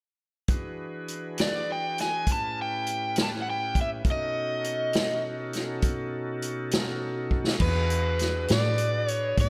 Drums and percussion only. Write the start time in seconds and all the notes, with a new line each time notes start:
0.48 kick, closed hi-hat
1.08 closed hi-hat
1.38 snare, closed hi-hat
1.98 snare, closed hi-hat
2.27 kick, closed hi-hat
2.87 closed hi-hat
3.16 snare, closed hi-hat
3.75 kick, closed hi-hat
4.05 kick, closed hi-hat
4.64 closed hi-hat
4.93 snare, closed hi-hat
5.53 snare, closed hi-hat
5.82 kick, closed hi-hat
6.42 closed hi-hat
6.71 snare, closed hi-hat
7.31 kick
7.47 snare
7.60 kick, crash
7.90 closed hi-hat
8.19 snare, closed hi-hat
8.48 snare, closed hi-hat
8.78 closed hi-hat
9.08 closed hi-hat
9.37 kick, closed hi-hat